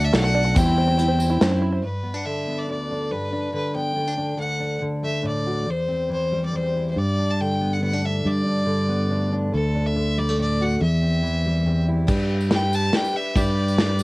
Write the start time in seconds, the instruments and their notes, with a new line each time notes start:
Already playing: fingered electric bass D2, five-string banjo A3 D4, twelve-string acoustic guitar D4 F#4 D5
0.04 fiddle E5
0.13 fingered electric bass B1, twelve-string acoustic guitar A3 D4 F#4 D5, five-string banjo A4, fiddle F#5, snare, closed hi-hat
0.24 five-string banjo A3, tambourine
0.34 five-string banjo D4, twelve-string acoustic guitar D4 F#4 D5
0.45 five-string banjo A4
0.55 fingered electric bass E2, twelve-string acoustic guitar E3 G3 C4 E4 C5, five-string banjo C4, fiddle G5, kick, closed hi-hat, tambourine
0.66 five-string banjo E4
0.78 five-string banjo C5
0.88 five-string banjo C4
0.97 twelve-string acoustic guitar G3 C4 E4 C5, five-string banjo E4, closed hi-hat, tambourine
1.08 five-string banjo C5
1.19 five-string banjo C4, tambourine
1.30 five-string banjo E4
1.41 fingered electric bass F#2, twelve-string acoustic guitar C4 E4 C5, five-string banjo C5, snare, closed hi-hat
1.52 five-string banjo C4
1.62 five-string banjo E4
1.72 five-string banjo C5
1.82 steel-string acoustic guitar G2, fiddle B4
2.03 steel-string acoustic guitar B3
2.14 steel-string acoustic guitar D4, fiddle F#5
2.25 steel-string acoustic guitar D3, fiddle E5
2.47 steel-string acoustic guitar B3
2.58 fiddle D5
2.69 steel-string acoustic guitar D2 D4, fiddle D5
2.91 steel-string acoustic guitar D4
3.11 steel-string acoustic guitar G2, fiddle B4
3.33 steel-string acoustic guitar D4
3.53 steel-string acoustic guitar D3, fiddle B4
3.75 steel-string acoustic guitar B3, fiddle G5
3.96 steel-string acoustic guitar D2 B3
4.07 steel-string acoustic guitar D4
4.17 steel-string acoustic guitar D4
4.37 steel-string acoustic guitar D2, fiddle F#5
4.60 steel-string acoustic guitar D4
4.82 steel-string acoustic guitar D3
5.03 steel-string acoustic guitar A3, fiddle E5
5.22 steel-string acoustic guitar A2 D4
5.27 fiddle D5
5.47 steel-string acoustic guitar F#4
5.66 steel-string acoustic guitar E2, fiddle C5
5.88 steel-string acoustic guitar C4
6.09 steel-string acoustic guitar E3, fiddle C5
6.32 steel-string acoustic guitar G3
6.45 fiddle D5
6.53 steel-string acoustic guitar E2 C4, fiddle C5
6.76 steel-string acoustic guitar E4
6.91 fiddle C5
6.96 steel-string acoustic guitar G2, fingered electric bass G2, fiddle D5
7.19 steel-string acoustic guitar D4
7.31 fiddle A5
7.40 steel-string acoustic guitar D3, fiddle G5
7.61 steel-string acoustic guitar B3
7.73 fiddle F#5
7.82 steel-string acoustic guitar D2 B3, fiddle F#5
7.93 steel-string acoustic guitar D4
8.05 steel-string acoustic guitar D4, fiddle E5
8.25 steel-string acoustic guitar G2, fingered electric bass G2, fiddle D5
8.46 steel-string acoustic guitar D4
8.66 steel-string acoustic guitar D3
8.89 steel-string acoustic guitar B3
9.10 steel-string acoustic guitar D2 D4
9.33 steel-string acoustic guitar D4
9.52 steel-string acoustic guitar D2, fingered electric bass D2, fiddle A4
9.75 steel-string acoustic guitar D4
9.86 fiddle E5
9.96 steel-string acoustic guitar D3
10.17 steel-string acoustic guitar G3, fiddle D5
10.29 steel-string acoustic guitar A3
10.38 steel-string acoustic guitar A2 D4, fiddle D5
10.61 steel-string acoustic guitar F#4, fiddle F#5
10.81 fingered electric bass E2, steel-string acoustic guitar E2, fiddle E5
11.02 steel-string acoustic guitar C4
11.22 steel-string acoustic guitar E3
11.45 steel-string acoustic guitar G3
11.66 steel-string acoustic guitar E2 C4
11.88 steel-string acoustic guitar E4
12.07 fingered electric bass G2, twelve-string acoustic guitar G3 D4 G4 B4, kick, crash, tambourine
12.18 tambourine
12.29 tambourine
12.41 tambourine
12.49 twelve-string acoustic guitar G3 D4 G4 B4, snare, ride, tambourine
12.54 fiddle G5
12.73 fiddle A5, tambourine
12.92 twelve-string acoustic guitar G3 D4 G4 B4, fiddle G5, snare, ride
13.05 tambourine
13.13 twelve-string acoustic guitar D4 G4 B4, fiddle E5
13.35 fingered electric bass G2, twelve-string acoustic guitar G3 D4 G4 B4, fiddle D5, kick, ride, tambourine
13.47 tambourine
13.57 tambourine
13.68 tambourine
13.78 twelve-string acoustic guitar G3 D4 G4 B4, snare, ride, tambourine
13.99 twelve-string acoustic guitar B4, tambourine